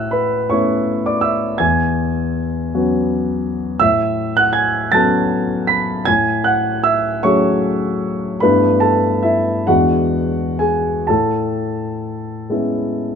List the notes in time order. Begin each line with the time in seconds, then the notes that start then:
Already playing: A2 E5 F#5 E6 F#6
0.11 B4 B5
0.50 A3 B3 C#4 E4 C#5 C#6
1.06 D5 D6
1.21 E5 E6
1.58 E2 G#5 G#6
2.74 F#3 B3 C#4 F#4
3.80 A2 E5 E6
4.37 F#5 F#6
4.53 G#5 G#6
4.92 F#3 B3 C#4 A4 A5 A6
5.67 B5 B6
6.05 A2 G#5 G#6
6.44 F#5 F#6
6.84 E5 E6
7.23 F#3 A3 C#4 G#4 C#5 C#6
8.40 G2 A3 B3 D4 E4 B4 B5
8.80 A4 A5
9.23 E4 E5
9.67 E2 G#3 B3 D4 E4 F#4 F#5
10.59 G#4 G#5
11.07 A2 A4 A5
12.50 G#3 B3 C#4 E4